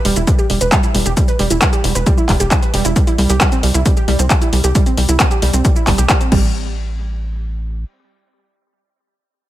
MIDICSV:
0, 0, Header, 1, 4, 480
1, 0, Start_track
1, 0, Tempo, 447761
1, 1253, Time_signature, 4, 2, 24, 8
1, 10173, End_track
2, 0, Start_track
2, 0, Title_t, "Synth arpeggio sound"
2, 0, Program_c, 0, 84
2, 53, Note_on_c, 0, 55, 105
2, 161, Note_off_c, 0, 55, 0
2, 173, Note_on_c, 0, 64, 73
2, 245, Note_off_c, 0, 64, 0
2, 294, Note_on_c, 0, 55, 81
2, 401, Note_off_c, 0, 55, 0
2, 413, Note_on_c, 0, 67, 76
2, 485, Note_off_c, 0, 67, 0
2, 534, Note_on_c, 0, 55, 78
2, 641, Note_off_c, 0, 55, 0
2, 654, Note_on_c, 0, 71, 78
2, 762, Note_off_c, 0, 71, 0
2, 774, Note_on_c, 0, 55, 105
2, 882, Note_off_c, 0, 55, 0
2, 894, Note_on_c, 0, 64, 77
2, 966, Note_off_c, 0, 64, 0
2, 1014, Note_on_c, 0, 55, 78
2, 1122, Note_off_c, 0, 55, 0
2, 1133, Note_on_c, 0, 67, 79
2, 1205, Note_off_c, 0, 67, 0
2, 1253, Note_on_c, 0, 55, 84
2, 1361, Note_off_c, 0, 55, 0
2, 1374, Note_on_c, 0, 71, 79
2, 1481, Note_off_c, 0, 71, 0
2, 1493, Note_on_c, 0, 55, 100
2, 1601, Note_off_c, 0, 55, 0
2, 1613, Note_on_c, 0, 64, 78
2, 1685, Note_off_c, 0, 64, 0
2, 1733, Note_on_c, 0, 55, 80
2, 1841, Note_off_c, 0, 55, 0
2, 1853, Note_on_c, 0, 67, 81
2, 1925, Note_off_c, 0, 67, 0
2, 1972, Note_on_c, 0, 55, 79
2, 2081, Note_off_c, 0, 55, 0
2, 2093, Note_on_c, 0, 71, 76
2, 2201, Note_off_c, 0, 71, 0
2, 2213, Note_on_c, 0, 55, 102
2, 2321, Note_off_c, 0, 55, 0
2, 2333, Note_on_c, 0, 64, 79
2, 2405, Note_off_c, 0, 64, 0
2, 2453, Note_on_c, 0, 55, 82
2, 2561, Note_off_c, 0, 55, 0
2, 2574, Note_on_c, 0, 67, 76
2, 2645, Note_off_c, 0, 67, 0
2, 2694, Note_on_c, 0, 55, 87
2, 2801, Note_off_c, 0, 55, 0
2, 2813, Note_on_c, 0, 71, 76
2, 2921, Note_off_c, 0, 71, 0
2, 2933, Note_on_c, 0, 55, 105
2, 3041, Note_off_c, 0, 55, 0
2, 3053, Note_on_c, 0, 64, 80
2, 3125, Note_off_c, 0, 64, 0
2, 3173, Note_on_c, 0, 55, 86
2, 3281, Note_off_c, 0, 55, 0
2, 3293, Note_on_c, 0, 64, 79
2, 3365, Note_off_c, 0, 64, 0
2, 3412, Note_on_c, 0, 55, 81
2, 3521, Note_off_c, 0, 55, 0
2, 3532, Note_on_c, 0, 67, 79
2, 3641, Note_off_c, 0, 67, 0
2, 3653, Note_on_c, 0, 55, 104
2, 3761, Note_off_c, 0, 55, 0
2, 3773, Note_on_c, 0, 60, 77
2, 3845, Note_off_c, 0, 60, 0
2, 3893, Note_on_c, 0, 55, 74
2, 4001, Note_off_c, 0, 55, 0
2, 4013, Note_on_c, 0, 64, 76
2, 4085, Note_off_c, 0, 64, 0
2, 4133, Note_on_c, 0, 55, 83
2, 4241, Note_off_c, 0, 55, 0
2, 4253, Note_on_c, 0, 67, 82
2, 4361, Note_off_c, 0, 67, 0
2, 4373, Note_on_c, 0, 55, 102
2, 4481, Note_off_c, 0, 55, 0
2, 4493, Note_on_c, 0, 60, 77
2, 4565, Note_off_c, 0, 60, 0
2, 4613, Note_on_c, 0, 55, 87
2, 4721, Note_off_c, 0, 55, 0
2, 4733, Note_on_c, 0, 64, 81
2, 4805, Note_off_c, 0, 64, 0
2, 4853, Note_on_c, 0, 55, 77
2, 4961, Note_off_c, 0, 55, 0
2, 4973, Note_on_c, 0, 67, 83
2, 5081, Note_off_c, 0, 67, 0
2, 5093, Note_on_c, 0, 55, 106
2, 5201, Note_off_c, 0, 55, 0
2, 5213, Note_on_c, 0, 60, 79
2, 5285, Note_off_c, 0, 60, 0
2, 5333, Note_on_c, 0, 55, 80
2, 5441, Note_off_c, 0, 55, 0
2, 5453, Note_on_c, 0, 64, 77
2, 5525, Note_off_c, 0, 64, 0
2, 5573, Note_on_c, 0, 55, 79
2, 5681, Note_off_c, 0, 55, 0
2, 5693, Note_on_c, 0, 67, 77
2, 5801, Note_off_c, 0, 67, 0
2, 5813, Note_on_c, 0, 55, 98
2, 5921, Note_off_c, 0, 55, 0
2, 5933, Note_on_c, 0, 60, 74
2, 6005, Note_off_c, 0, 60, 0
2, 6053, Note_on_c, 0, 55, 85
2, 6161, Note_off_c, 0, 55, 0
2, 6173, Note_on_c, 0, 64, 76
2, 6245, Note_off_c, 0, 64, 0
2, 6292, Note_on_c, 0, 55, 76
2, 6401, Note_off_c, 0, 55, 0
2, 6413, Note_on_c, 0, 67, 78
2, 6521, Note_off_c, 0, 67, 0
2, 6533, Note_on_c, 0, 55, 103
2, 6641, Note_off_c, 0, 55, 0
2, 6653, Note_on_c, 0, 60, 75
2, 6725, Note_off_c, 0, 60, 0
2, 6773, Note_on_c, 0, 55, 93
2, 7219, Note_off_c, 0, 55, 0
2, 10173, End_track
3, 0, Start_track
3, 0, Title_t, "Analog synth bass"
3, 0, Program_c, 1, 38
3, 54, Note_on_c, 1, 28, 95
3, 149, Note_off_c, 1, 28, 0
3, 174, Note_on_c, 1, 28, 83
3, 269, Note_off_c, 1, 28, 0
3, 534, Note_on_c, 1, 28, 94
3, 629, Note_off_c, 1, 28, 0
3, 654, Note_on_c, 1, 28, 80
3, 749, Note_off_c, 1, 28, 0
3, 1014, Note_on_c, 1, 28, 95
3, 1109, Note_off_c, 1, 28, 0
3, 1134, Note_on_c, 1, 28, 84
3, 1229, Note_off_c, 1, 28, 0
3, 1494, Note_on_c, 1, 28, 96
3, 1589, Note_off_c, 1, 28, 0
3, 1614, Note_on_c, 1, 28, 85
3, 1709, Note_off_c, 1, 28, 0
3, 1973, Note_on_c, 1, 28, 99
3, 2069, Note_off_c, 1, 28, 0
3, 2094, Note_on_c, 1, 28, 82
3, 2189, Note_off_c, 1, 28, 0
3, 2453, Note_on_c, 1, 28, 93
3, 2549, Note_off_c, 1, 28, 0
3, 2575, Note_on_c, 1, 28, 84
3, 2669, Note_off_c, 1, 28, 0
3, 2934, Note_on_c, 1, 28, 96
3, 3029, Note_off_c, 1, 28, 0
3, 3054, Note_on_c, 1, 28, 85
3, 3149, Note_off_c, 1, 28, 0
3, 3414, Note_on_c, 1, 36, 94
3, 3509, Note_off_c, 1, 36, 0
3, 3534, Note_on_c, 1, 36, 78
3, 3629, Note_off_c, 1, 36, 0
3, 3894, Note_on_c, 1, 36, 93
3, 3989, Note_off_c, 1, 36, 0
3, 4014, Note_on_c, 1, 36, 84
3, 4109, Note_off_c, 1, 36, 0
3, 4373, Note_on_c, 1, 36, 92
3, 4469, Note_off_c, 1, 36, 0
3, 4494, Note_on_c, 1, 36, 81
3, 4589, Note_off_c, 1, 36, 0
3, 4854, Note_on_c, 1, 36, 100
3, 4949, Note_off_c, 1, 36, 0
3, 4974, Note_on_c, 1, 36, 87
3, 5069, Note_off_c, 1, 36, 0
3, 5333, Note_on_c, 1, 36, 93
3, 5429, Note_off_c, 1, 36, 0
3, 5454, Note_on_c, 1, 36, 81
3, 5549, Note_off_c, 1, 36, 0
3, 5814, Note_on_c, 1, 36, 97
3, 5909, Note_off_c, 1, 36, 0
3, 5934, Note_on_c, 1, 36, 81
3, 6029, Note_off_c, 1, 36, 0
3, 6293, Note_on_c, 1, 31, 94
3, 6389, Note_off_c, 1, 31, 0
3, 6414, Note_on_c, 1, 36, 79
3, 6509, Note_off_c, 1, 36, 0
3, 6773, Note_on_c, 1, 33, 98
3, 8410, Note_off_c, 1, 33, 0
3, 10173, End_track
4, 0, Start_track
4, 0, Title_t, "Drums"
4, 54, Note_on_c, 9, 46, 112
4, 161, Note_off_c, 9, 46, 0
4, 174, Note_on_c, 9, 42, 53
4, 174, Note_on_c, 9, 82, 67
4, 281, Note_off_c, 9, 42, 0
4, 281, Note_off_c, 9, 82, 0
4, 293, Note_on_c, 9, 42, 73
4, 293, Note_on_c, 9, 82, 52
4, 294, Note_on_c, 9, 36, 120
4, 401, Note_off_c, 9, 36, 0
4, 401, Note_off_c, 9, 42, 0
4, 401, Note_off_c, 9, 82, 0
4, 413, Note_on_c, 9, 82, 32
4, 521, Note_off_c, 9, 82, 0
4, 534, Note_on_c, 9, 46, 104
4, 641, Note_off_c, 9, 46, 0
4, 654, Note_on_c, 9, 42, 53
4, 654, Note_on_c, 9, 82, 66
4, 761, Note_off_c, 9, 42, 0
4, 761, Note_off_c, 9, 82, 0
4, 774, Note_on_c, 9, 36, 120
4, 774, Note_on_c, 9, 39, 115
4, 774, Note_on_c, 9, 42, 78
4, 774, Note_on_c, 9, 82, 57
4, 881, Note_off_c, 9, 36, 0
4, 881, Note_off_c, 9, 39, 0
4, 881, Note_off_c, 9, 42, 0
4, 881, Note_off_c, 9, 82, 0
4, 894, Note_on_c, 9, 42, 35
4, 894, Note_on_c, 9, 82, 32
4, 1001, Note_off_c, 9, 42, 0
4, 1001, Note_off_c, 9, 82, 0
4, 1014, Note_on_c, 9, 46, 104
4, 1121, Note_off_c, 9, 46, 0
4, 1134, Note_on_c, 9, 42, 53
4, 1134, Note_on_c, 9, 82, 65
4, 1241, Note_off_c, 9, 42, 0
4, 1241, Note_off_c, 9, 82, 0
4, 1253, Note_on_c, 9, 36, 111
4, 1253, Note_on_c, 9, 42, 80
4, 1253, Note_on_c, 9, 82, 57
4, 1360, Note_off_c, 9, 42, 0
4, 1360, Note_off_c, 9, 82, 0
4, 1361, Note_off_c, 9, 36, 0
4, 1373, Note_on_c, 9, 42, 36
4, 1373, Note_on_c, 9, 82, 33
4, 1481, Note_off_c, 9, 42, 0
4, 1481, Note_off_c, 9, 82, 0
4, 1493, Note_on_c, 9, 46, 101
4, 1600, Note_off_c, 9, 46, 0
4, 1613, Note_on_c, 9, 42, 51
4, 1613, Note_on_c, 9, 82, 68
4, 1721, Note_off_c, 9, 42, 0
4, 1721, Note_off_c, 9, 82, 0
4, 1733, Note_on_c, 9, 36, 114
4, 1733, Note_on_c, 9, 39, 119
4, 1733, Note_on_c, 9, 42, 78
4, 1733, Note_on_c, 9, 82, 58
4, 1841, Note_off_c, 9, 36, 0
4, 1841, Note_off_c, 9, 39, 0
4, 1841, Note_off_c, 9, 42, 0
4, 1841, Note_off_c, 9, 82, 0
4, 1853, Note_on_c, 9, 42, 38
4, 1853, Note_on_c, 9, 82, 35
4, 1960, Note_off_c, 9, 42, 0
4, 1960, Note_off_c, 9, 82, 0
4, 1974, Note_on_c, 9, 46, 104
4, 2081, Note_off_c, 9, 46, 0
4, 2094, Note_on_c, 9, 42, 55
4, 2094, Note_on_c, 9, 82, 69
4, 2201, Note_off_c, 9, 42, 0
4, 2201, Note_off_c, 9, 82, 0
4, 2213, Note_on_c, 9, 36, 118
4, 2213, Note_on_c, 9, 42, 78
4, 2213, Note_on_c, 9, 82, 55
4, 2320, Note_off_c, 9, 36, 0
4, 2321, Note_off_c, 9, 42, 0
4, 2321, Note_off_c, 9, 82, 0
4, 2334, Note_on_c, 9, 82, 33
4, 2441, Note_off_c, 9, 82, 0
4, 2453, Note_on_c, 9, 36, 58
4, 2454, Note_on_c, 9, 39, 58
4, 2454, Note_on_c, 9, 46, 99
4, 2560, Note_off_c, 9, 36, 0
4, 2561, Note_off_c, 9, 39, 0
4, 2561, Note_off_c, 9, 46, 0
4, 2574, Note_on_c, 9, 42, 54
4, 2574, Note_on_c, 9, 82, 68
4, 2681, Note_off_c, 9, 42, 0
4, 2681, Note_off_c, 9, 82, 0
4, 2693, Note_on_c, 9, 36, 120
4, 2694, Note_on_c, 9, 39, 114
4, 2694, Note_on_c, 9, 42, 84
4, 2694, Note_on_c, 9, 82, 58
4, 2800, Note_off_c, 9, 36, 0
4, 2801, Note_off_c, 9, 39, 0
4, 2801, Note_off_c, 9, 42, 0
4, 2801, Note_off_c, 9, 82, 0
4, 2814, Note_on_c, 9, 42, 38
4, 2814, Note_on_c, 9, 82, 32
4, 2922, Note_off_c, 9, 42, 0
4, 2922, Note_off_c, 9, 82, 0
4, 2934, Note_on_c, 9, 46, 103
4, 3041, Note_off_c, 9, 46, 0
4, 3054, Note_on_c, 9, 42, 55
4, 3054, Note_on_c, 9, 82, 68
4, 3161, Note_off_c, 9, 42, 0
4, 3161, Note_off_c, 9, 82, 0
4, 3173, Note_on_c, 9, 36, 114
4, 3174, Note_on_c, 9, 42, 84
4, 3174, Note_on_c, 9, 82, 57
4, 3281, Note_off_c, 9, 36, 0
4, 3281, Note_off_c, 9, 42, 0
4, 3281, Note_off_c, 9, 82, 0
4, 3294, Note_on_c, 9, 42, 39
4, 3294, Note_on_c, 9, 82, 33
4, 3401, Note_off_c, 9, 42, 0
4, 3401, Note_off_c, 9, 82, 0
4, 3414, Note_on_c, 9, 46, 97
4, 3521, Note_off_c, 9, 46, 0
4, 3534, Note_on_c, 9, 42, 57
4, 3534, Note_on_c, 9, 82, 71
4, 3641, Note_off_c, 9, 42, 0
4, 3641, Note_off_c, 9, 82, 0
4, 3653, Note_on_c, 9, 39, 120
4, 3653, Note_on_c, 9, 42, 82
4, 3653, Note_on_c, 9, 82, 56
4, 3654, Note_on_c, 9, 36, 109
4, 3761, Note_off_c, 9, 36, 0
4, 3761, Note_off_c, 9, 39, 0
4, 3761, Note_off_c, 9, 42, 0
4, 3761, Note_off_c, 9, 82, 0
4, 3773, Note_on_c, 9, 42, 39
4, 3773, Note_on_c, 9, 82, 36
4, 3881, Note_off_c, 9, 42, 0
4, 3881, Note_off_c, 9, 82, 0
4, 3894, Note_on_c, 9, 46, 100
4, 4001, Note_off_c, 9, 46, 0
4, 4014, Note_on_c, 9, 42, 56
4, 4014, Note_on_c, 9, 82, 71
4, 4121, Note_off_c, 9, 42, 0
4, 4121, Note_off_c, 9, 82, 0
4, 4133, Note_on_c, 9, 36, 116
4, 4134, Note_on_c, 9, 42, 79
4, 4134, Note_on_c, 9, 82, 56
4, 4241, Note_off_c, 9, 36, 0
4, 4241, Note_off_c, 9, 42, 0
4, 4241, Note_off_c, 9, 82, 0
4, 4254, Note_on_c, 9, 82, 35
4, 4361, Note_off_c, 9, 82, 0
4, 4374, Note_on_c, 9, 46, 94
4, 4481, Note_off_c, 9, 46, 0
4, 4494, Note_on_c, 9, 42, 57
4, 4494, Note_on_c, 9, 82, 72
4, 4601, Note_off_c, 9, 42, 0
4, 4601, Note_off_c, 9, 82, 0
4, 4613, Note_on_c, 9, 36, 115
4, 4614, Note_on_c, 9, 39, 120
4, 4614, Note_on_c, 9, 42, 81
4, 4614, Note_on_c, 9, 82, 58
4, 4721, Note_off_c, 9, 36, 0
4, 4721, Note_off_c, 9, 39, 0
4, 4721, Note_off_c, 9, 42, 0
4, 4721, Note_off_c, 9, 82, 0
4, 4734, Note_on_c, 9, 42, 37
4, 4734, Note_on_c, 9, 82, 34
4, 4841, Note_off_c, 9, 42, 0
4, 4841, Note_off_c, 9, 82, 0
4, 4853, Note_on_c, 9, 46, 99
4, 4960, Note_off_c, 9, 46, 0
4, 4974, Note_on_c, 9, 42, 58
4, 4974, Note_on_c, 9, 82, 68
4, 5081, Note_off_c, 9, 42, 0
4, 5081, Note_off_c, 9, 82, 0
4, 5093, Note_on_c, 9, 36, 119
4, 5093, Note_on_c, 9, 42, 88
4, 5093, Note_on_c, 9, 82, 56
4, 5200, Note_off_c, 9, 42, 0
4, 5200, Note_off_c, 9, 82, 0
4, 5201, Note_off_c, 9, 36, 0
4, 5213, Note_on_c, 9, 42, 39
4, 5213, Note_on_c, 9, 82, 33
4, 5320, Note_off_c, 9, 42, 0
4, 5320, Note_off_c, 9, 82, 0
4, 5333, Note_on_c, 9, 46, 107
4, 5440, Note_off_c, 9, 46, 0
4, 5453, Note_on_c, 9, 42, 56
4, 5453, Note_on_c, 9, 82, 68
4, 5560, Note_off_c, 9, 42, 0
4, 5560, Note_off_c, 9, 82, 0
4, 5573, Note_on_c, 9, 36, 116
4, 5573, Note_on_c, 9, 39, 127
4, 5573, Note_on_c, 9, 42, 85
4, 5573, Note_on_c, 9, 82, 57
4, 5681, Note_off_c, 9, 36, 0
4, 5681, Note_off_c, 9, 39, 0
4, 5681, Note_off_c, 9, 42, 0
4, 5681, Note_off_c, 9, 82, 0
4, 5693, Note_on_c, 9, 42, 40
4, 5693, Note_on_c, 9, 82, 34
4, 5800, Note_off_c, 9, 42, 0
4, 5800, Note_off_c, 9, 82, 0
4, 5813, Note_on_c, 9, 46, 104
4, 5920, Note_off_c, 9, 46, 0
4, 5933, Note_on_c, 9, 42, 55
4, 5933, Note_on_c, 9, 82, 71
4, 6041, Note_off_c, 9, 42, 0
4, 6041, Note_off_c, 9, 82, 0
4, 6053, Note_on_c, 9, 36, 117
4, 6054, Note_on_c, 9, 42, 81
4, 6054, Note_on_c, 9, 82, 53
4, 6161, Note_off_c, 9, 36, 0
4, 6161, Note_off_c, 9, 42, 0
4, 6161, Note_off_c, 9, 82, 0
4, 6174, Note_on_c, 9, 82, 35
4, 6281, Note_off_c, 9, 82, 0
4, 6293, Note_on_c, 9, 36, 60
4, 6294, Note_on_c, 9, 39, 61
4, 6294, Note_on_c, 9, 46, 99
4, 6401, Note_off_c, 9, 36, 0
4, 6401, Note_off_c, 9, 39, 0
4, 6401, Note_off_c, 9, 46, 0
4, 6414, Note_on_c, 9, 42, 58
4, 6414, Note_on_c, 9, 82, 66
4, 6521, Note_off_c, 9, 42, 0
4, 6521, Note_off_c, 9, 82, 0
4, 6533, Note_on_c, 9, 36, 118
4, 6534, Note_on_c, 9, 39, 122
4, 6534, Note_on_c, 9, 42, 87
4, 6534, Note_on_c, 9, 82, 55
4, 6641, Note_off_c, 9, 36, 0
4, 6641, Note_off_c, 9, 39, 0
4, 6641, Note_off_c, 9, 42, 0
4, 6641, Note_off_c, 9, 82, 0
4, 6654, Note_on_c, 9, 42, 39
4, 6654, Note_on_c, 9, 82, 33
4, 6761, Note_off_c, 9, 42, 0
4, 6761, Note_off_c, 9, 82, 0
4, 6773, Note_on_c, 9, 36, 113
4, 6774, Note_on_c, 9, 49, 88
4, 6881, Note_off_c, 9, 36, 0
4, 6881, Note_off_c, 9, 49, 0
4, 10173, End_track
0, 0, End_of_file